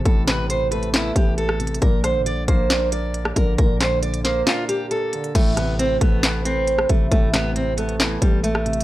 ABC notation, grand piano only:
X:1
M:4/4
L:1/8
Q:1/4=136
K:Am
V:1 name="Grand piano" clef=bass
[A,,B,,C,] C,2 A, B,3 C, | _B,, D,2 _B, D3 D, | _B,, D,2 _B, D3 D, | A,, C,2 A, B3 C, |
A,, C,2 A, B,3 C, |]